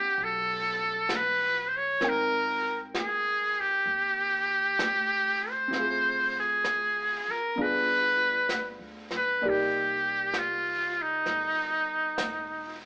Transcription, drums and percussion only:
0.18 brush sweep soft
1.09 brush sweep soft
1.09 snare soft
1.09 hi-hat pedal medium
2.01 brush sweep soft
2.01 snare soft
2.94 brush sweep soft
2.94 snare soft
2.94 hi-hat pedal soft
3.88 brush sweep soft
4.79 brush sweep soft
4.79 snare soft
4.79 hi-hat pedal soft
5.73 brush sweep soft
5.73 snare soft
6.64 brush sweep soft
6.64 snare soft
6.64 hi-hat pedal soft
7.57 brush sweep soft
8.49 brush sweep soft
8.49 snare soft
8.49 hi-hat pedal soft
9.11 snare soft
9.41 brush sweep soft
10.34 brush sweep soft
10.34 snare soft
10.34 hi-hat pedal soft
11.26 brush sweep soft
11.26 snare soft
12.18 brush sweep soft
12.18 snare soft
12.18 hi-hat pedal soft

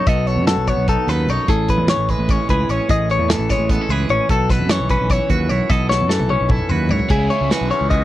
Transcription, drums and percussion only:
0.07 kick loud
0.07 closed hi-hat medium
0.27 closed hi-hat medium
0.47 snare loud
0.47 closed hi-hat medium
0.67 kick medium
0.67 closed hi-hat medium
0.88 kick loud
0.88 closed hi-hat medium
1.08 snare soft
1.08 closed hi-hat medium
1.29 closed hi-hat medium
1.48 kick loud
1.48 closed hi-hat medium
1.68 kick medium
1.68 closed hi-hat medium
1.88 snare loud
1.88 closed hi-hat medium
2.09 kick medium
2.09 closed hi-hat medium
2.29 kick loud
2.29 closed hi-hat medium
2.49 kick medium
2.49 closed hi-hat medium
2.69 closed hi-hat medium
2.89 kick loud
2.89 closed hi-hat medium
3.10 closed hi-hat medium
3.30 snare loud
3.30 closed hi-hat medium
3.50 kick medium
3.50 snare soft
3.50 closed hi-hat medium
3.69 kick loud
3.69 closed hi-hat medium
3.89 closed hi-hat medium
4.09 closed hi-hat medium
4.29 kick loud
4.29 closed hi-hat medium
4.50 kick medium
4.50 snare soft
4.50 closed hi-hat medium
4.69 snare loud
4.69 closed hi-hat medium
4.89 kick medium
4.89 closed hi-hat medium
5.10 kick loud
5.10 closed hi-hat medium
5.30 kick medium
5.30 closed hi-hat medium
5.50 closed hi-hat medium
5.70 kick loud
5.70 closed hi-hat medium
5.91 snare medium
6.10 snare medium
6.19 high tom medium
6.29 high tom medium
6.49 kick loud
6.49 mid tom medium
6.59 mid tom medium
6.69 mid tom medium
6.89 floor tom medium
6.99 floor tom medium
7.09 kick loud
7.09 closed hi-hat medium
7.30 closed hi-hat medium
7.51 snare loud
7.51 closed hi-hat medium
7.71 closed hi-hat medium
7.91 kick loud
7.91 closed hi-hat medium

